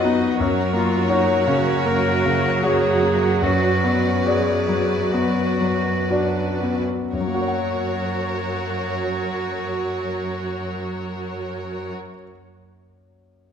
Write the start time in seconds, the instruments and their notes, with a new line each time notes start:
Already playing: cello section F#2, viola section F#3 F#4, grand piano F#3 B3 F#4 D#5, violin section B4 D#5
0.04 grand piano B3, clarinet D#4
0.39 cello section F#2, grand piano F#2, viola section F#3 F#4, violin section A#4 C#5
0.73 grand piano A#3, clarinet F4
1.09 clarinet D#4, grand piano F#4 C#5
1.47 grand piano C#3, clarinet C#4
1.86 grand piano A#3, clarinet A#4
2.25 grand piano C#3
2.63 grand piano F#4 C#5, clarinet G#4
3.02 grand piano A#3
3.42 grand piano F#2, clarinet F#4, violin section B4 D5
3.84 grand piano B3
4.26 grand piano F#4 D5, clarinet G#4
4.69 grand piano F#3
5.13 grand piano B3, clarinet F#4
5.61 grand piano F#3
6.11 clarinet D4, grand piano F#4 D5
6.62 grand piano B3, clarinet C#4
7.12 grand piano F#2, cello section F#2, viola section F#3 F#4, clarinet F#4, violin section A#4 C#5
7.20 grand piano F#3
7.27 grand piano A#3
7.34 grand piano F#4
7.41 grand piano C#5
7.48 grand piano F#5